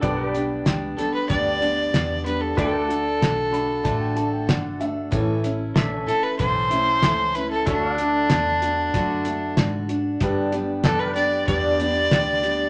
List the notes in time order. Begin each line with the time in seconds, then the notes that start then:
0.01 B1 G2 D3 G3 B3 D4 G4 A4 B4 D5 F#5, kick, closed hi-hat
0.23 B4 G5
0.34 G3 B3 D4 G4, closed hi-hat
0.65 C#2 G3 B3 D4 G4, snare, closed hi-hat
0.97 G3 B3 D4 G4 A4, muted fingered electric bass stroke, closed hi-hat
1.14 B4
1.28 D2 G2 D3 G3 B3 D4 G4 D5, kick, closed hi-hat
1.60 G3 B3 D4 G4, closed hi-hat
1.93 E2 G3 B3 D4 G4, snare, closed hi-hat
2.24 G3 B3 D4 G4 B4, closed hi-hat
2.41 A4
2.56 D2 D3 A3 D4 F#4 A4 B4 D5, kick, closed hi-hat
2.60 G5
2.80 A4 F#5
2.88 A3 D4 F#4, closed hi-hat
3.20 B1 D3 A3 D4 F#4, snare, closed hi-hat
3.51 A3 D4 F#4 B5, closed hi-hat
3.83 A1 D3 A3 D4 F#4 A5, kick, closed hi-hat
4.00 G5
4.15 A3 D4 F#4 A5, closed hi-hat
4.33 G5
4.47 G1 D3 A3 D4 F#4 F#5, snare, closed hi-hat
4.80 A3 D4 F#4 E5, closed hi-hat
5.11 A1 A2 E3 A3 C#4 E4 A4, kick, closed hi-hat
5.43 A3 C#4 E4, closed hi-hat
5.76 A#1 E3 A3 C#4 D4 E4 A4 E5, snare, closed hi-hat
5.97 C#4
6.07 A3 C#4 E4 A4, muted fingered electric bass stroke, closed hi-hat
6.23 B4
6.39 B1 A2 E3 A3 C#4 E4 C5, kick, closed hi-hat
6.70 A3 C#4 E4, closed hi-hat
7.02 C#2 E3 A3 C#4 E4 A4, snare, closed hi-hat
7.35 A3 C#4 E4 B4, closed hi-hat
7.51 A4
7.66 D2 D3 A3 D4 F#4 A4 C#5 E5, kick, closed hi-hat
7.88 D5
7.93 F#5
7.98 A3 D4 F#4, closed hi-hat
8.30 E2 D3 A3 D4 F#4, snare, closed hi-hat
8.62 A3 D4 F#4, closed hi-hat
8.94 F#2 D3 A3 D4 F#4, kick, closed hi-hat
9.25 A3 D4 F#4, closed hi-hat
9.57 G#2 D3 D4 F#4, snare, closed hi-hat
9.88 D4 F#4, closed hi-hat
10.20 G2 D3 G3 B3 D4 G4 B4, kick, closed hi-hat
10.52 G3 B3 D4 G4, closed hi-hat
10.84 F#2 B3 D4 G4 A4 D5 F#5, snare, closed hi-hat
10.99 B4
11.07 B4 G5
11.15 B3 D4 G4 D5, closed hi-hat
11.47 E2 G2 D3 G3 B3 D4 G4 D5, kick, closed hi-hat
11.79 G3 B3 D4 G4, closed hi-hat
12.10 D2 G3 B3 D4 G4, snare, closed hi-hat
12.43 G3 B3 D4 G4, closed hi-hat